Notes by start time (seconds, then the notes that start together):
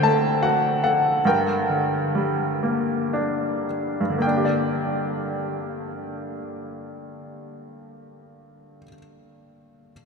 Already playing: D3 C5 G5
0.02 A3 A5
0.43 F#4 F#5
0.84 A4 F#5
1.25 G2 A#4 G5
1.69 D3
2.15 G3
2.63 A#3
3.13 D4
4.01 G2
4.10 D3
4.18 A#3 G5
4.27 D4
4.37 G4
4.45 D5